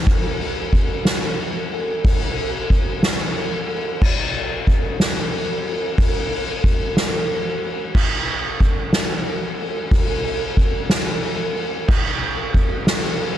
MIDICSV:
0, 0, Header, 1, 2, 480
1, 0, Start_track
1, 0, Tempo, 656455
1, 54, Time_signature, 6, 3, 24, 8
1, 9783, End_track
2, 0, Start_track
2, 0, Title_t, "Drums"
2, 46, Note_on_c, 9, 51, 127
2, 50, Note_on_c, 9, 36, 117
2, 120, Note_off_c, 9, 51, 0
2, 123, Note_off_c, 9, 36, 0
2, 292, Note_on_c, 9, 51, 96
2, 365, Note_off_c, 9, 51, 0
2, 530, Note_on_c, 9, 51, 92
2, 532, Note_on_c, 9, 36, 80
2, 603, Note_off_c, 9, 51, 0
2, 605, Note_off_c, 9, 36, 0
2, 770, Note_on_c, 9, 38, 119
2, 770, Note_on_c, 9, 51, 114
2, 843, Note_off_c, 9, 38, 0
2, 843, Note_off_c, 9, 51, 0
2, 1016, Note_on_c, 9, 51, 75
2, 1089, Note_off_c, 9, 51, 0
2, 1258, Note_on_c, 9, 51, 84
2, 1331, Note_off_c, 9, 51, 0
2, 1496, Note_on_c, 9, 36, 125
2, 1497, Note_on_c, 9, 51, 120
2, 1569, Note_off_c, 9, 36, 0
2, 1570, Note_off_c, 9, 51, 0
2, 1737, Note_on_c, 9, 51, 87
2, 1810, Note_off_c, 9, 51, 0
2, 1975, Note_on_c, 9, 51, 82
2, 1976, Note_on_c, 9, 36, 86
2, 2049, Note_off_c, 9, 36, 0
2, 2049, Note_off_c, 9, 51, 0
2, 2214, Note_on_c, 9, 38, 120
2, 2214, Note_on_c, 9, 51, 116
2, 2287, Note_off_c, 9, 38, 0
2, 2287, Note_off_c, 9, 51, 0
2, 2456, Note_on_c, 9, 51, 84
2, 2529, Note_off_c, 9, 51, 0
2, 2699, Note_on_c, 9, 51, 84
2, 2772, Note_off_c, 9, 51, 0
2, 2937, Note_on_c, 9, 36, 126
2, 2939, Note_on_c, 9, 49, 120
2, 3010, Note_off_c, 9, 36, 0
2, 3012, Note_off_c, 9, 49, 0
2, 3178, Note_on_c, 9, 51, 86
2, 3251, Note_off_c, 9, 51, 0
2, 3417, Note_on_c, 9, 36, 87
2, 3421, Note_on_c, 9, 51, 93
2, 3491, Note_off_c, 9, 36, 0
2, 3494, Note_off_c, 9, 51, 0
2, 3655, Note_on_c, 9, 38, 122
2, 3655, Note_on_c, 9, 51, 119
2, 3728, Note_off_c, 9, 38, 0
2, 3728, Note_off_c, 9, 51, 0
2, 3896, Note_on_c, 9, 51, 91
2, 3969, Note_off_c, 9, 51, 0
2, 4133, Note_on_c, 9, 51, 94
2, 4206, Note_off_c, 9, 51, 0
2, 4374, Note_on_c, 9, 36, 122
2, 4374, Note_on_c, 9, 51, 126
2, 4447, Note_off_c, 9, 51, 0
2, 4448, Note_off_c, 9, 36, 0
2, 4616, Note_on_c, 9, 51, 101
2, 4689, Note_off_c, 9, 51, 0
2, 4855, Note_on_c, 9, 36, 94
2, 4858, Note_on_c, 9, 51, 93
2, 4928, Note_off_c, 9, 36, 0
2, 4931, Note_off_c, 9, 51, 0
2, 5095, Note_on_c, 9, 38, 118
2, 5095, Note_on_c, 9, 51, 116
2, 5168, Note_off_c, 9, 38, 0
2, 5168, Note_off_c, 9, 51, 0
2, 5335, Note_on_c, 9, 51, 80
2, 5409, Note_off_c, 9, 51, 0
2, 5575, Note_on_c, 9, 51, 75
2, 5648, Note_off_c, 9, 51, 0
2, 5812, Note_on_c, 9, 36, 121
2, 5812, Note_on_c, 9, 57, 120
2, 5885, Note_off_c, 9, 36, 0
2, 5885, Note_off_c, 9, 57, 0
2, 6049, Note_on_c, 9, 51, 83
2, 6122, Note_off_c, 9, 51, 0
2, 6291, Note_on_c, 9, 51, 80
2, 6292, Note_on_c, 9, 36, 84
2, 6364, Note_off_c, 9, 51, 0
2, 6365, Note_off_c, 9, 36, 0
2, 6528, Note_on_c, 9, 38, 121
2, 6528, Note_on_c, 9, 51, 109
2, 6601, Note_off_c, 9, 38, 0
2, 6601, Note_off_c, 9, 51, 0
2, 6769, Note_on_c, 9, 51, 83
2, 6842, Note_off_c, 9, 51, 0
2, 7011, Note_on_c, 9, 51, 92
2, 7084, Note_off_c, 9, 51, 0
2, 7248, Note_on_c, 9, 51, 127
2, 7250, Note_on_c, 9, 36, 120
2, 7321, Note_off_c, 9, 51, 0
2, 7323, Note_off_c, 9, 36, 0
2, 7485, Note_on_c, 9, 51, 96
2, 7558, Note_off_c, 9, 51, 0
2, 7728, Note_on_c, 9, 51, 86
2, 7730, Note_on_c, 9, 36, 85
2, 7802, Note_off_c, 9, 51, 0
2, 7803, Note_off_c, 9, 36, 0
2, 7967, Note_on_c, 9, 38, 125
2, 7967, Note_on_c, 9, 51, 117
2, 8040, Note_off_c, 9, 38, 0
2, 8040, Note_off_c, 9, 51, 0
2, 8206, Note_on_c, 9, 51, 89
2, 8279, Note_off_c, 9, 51, 0
2, 8445, Note_on_c, 9, 51, 88
2, 8518, Note_off_c, 9, 51, 0
2, 8686, Note_on_c, 9, 57, 119
2, 8691, Note_on_c, 9, 36, 127
2, 8759, Note_off_c, 9, 57, 0
2, 8764, Note_off_c, 9, 36, 0
2, 8931, Note_on_c, 9, 51, 98
2, 9004, Note_off_c, 9, 51, 0
2, 9168, Note_on_c, 9, 51, 91
2, 9173, Note_on_c, 9, 36, 81
2, 9241, Note_off_c, 9, 51, 0
2, 9246, Note_off_c, 9, 36, 0
2, 9410, Note_on_c, 9, 38, 127
2, 9410, Note_on_c, 9, 51, 122
2, 9483, Note_off_c, 9, 38, 0
2, 9483, Note_off_c, 9, 51, 0
2, 9654, Note_on_c, 9, 51, 81
2, 9727, Note_off_c, 9, 51, 0
2, 9783, End_track
0, 0, End_of_file